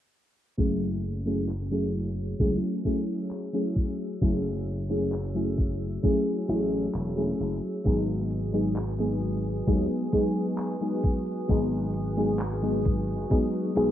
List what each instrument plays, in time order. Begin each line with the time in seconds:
0.57 slap bass F#1, fm electric piano F#3 A3 C#4 E4 G#4, ambient pad F#4 C#5 E6, kick, closed hi-hat
0.80 closed hi-hat
1.03 closed hi-hat
1.25 fm electric piano F#3 A3 C#4 E4 G#4, closed hi-hat
1.49 clap
1.71 fm electric piano F#3 A3 C#4 E4 G#4, closed hi-hat
1.94 closed hi-hat
2.17 closed hi-hat
2.39 slap bass C#2, fm electric piano F#3 A3 C#4 E4 G#4, kick, closed hi-hat
2.62 closed hi-hat
2.84 fm electric piano F#3 A3 C#4 E4 G#4, kick, closed hi-hat
3.08 closed hi-hat
3.31 clap
3.53 fm electric piano F#3 A3 C#4 E4 G#4, closed hi-hat
3.76 kick, closed hi-hat
3.99 closed hi-hat
4.21 slap bass F#1, fm electric piano F#3 A3 C#4 E4 G#4, kick, closed hi-hat
4.44 closed hi-hat
4.66 closed hi-hat
4.89 fm electric piano F#3 A3 C#4 E4 G#4, closed hi-hat
5.12 clap
5.34 fm electric piano F#3 A3 C#4 E4 G#4, closed hi-hat
5.58 kick, closed hi-hat
5.81 closed hi-hat
6.03 fm electric piano F#3 A3 C#4 E4 G#4, kick, closed hi-hat
6.26 closed hi-hat
6.48 slap bass A1, fm electric piano F#3 A3 C#4 E4 G#4, closed hi-hat
6.71 closed hi-hat
6.94 slap bass E1, clap, closed hi-hat
7.16 fm electric piano F#3 A3 C#4 E4 G#4, closed hi-hat
7.40 slap bass F#1, closed hi-hat
7.62 closed hi-hat
7.84 slap bass G#1, fm electric piano F#3 G#3 B3 D#4 G#4, ambient pad B4 G#5 D#6, kick, closed hi-hat
8.08 closed hi-hat
8.30 closed hi-hat
8.52 fm electric piano F#3 G#3 B3 D#4 G#4, closed hi-hat
8.76 clap
8.99 fm electric piano F#3 G#3 B3 D#4 G#4, closed hi-hat
9.21 closed hi-hat
9.44 closed hi-hat
9.67 slap bass D#2, fm electric piano F#3 G#3 B3 D#4 G#4, kick, closed hi-hat
9.90 closed hi-hat
10.12 fm electric piano F#3 G#3 B3 D#4 G#4, kick, closed hi-hat
10.35 closed hi-hat
10.58 clap, closed hi-hat
10.81 fm electric piano F#3 G#3 B3 D#4 G#4, closed hi-hat
11.03 kick, closed hi-hat
11.26 closed hi-hat
11.48 slap bass G#1, fm electric piano F#3 G#3 B3 D#4 G#4, kick, closed hi-hat
11.71 closed hi-hat
11.94 closed hi-hat
12.16 fm electric piano F#3 G#3 B3 D#4 G#4, closed hi-hat
12.39 clap, closed hi-hat
12.62 fm electric piano F#3 G#3 B3 D#4 G#4, closed hi-hat
12.85 kick, closed hi-hat
13.08 closed hi-hat
13.30 fm electric piano F#3 G#3 B3 D#4 G#4, kick, closed hi-hat
13.53 closed hi-hat
13.75 slap bass B1, fm electric piano F#3 G#3 B3 D#4 G#4, closed hi-hat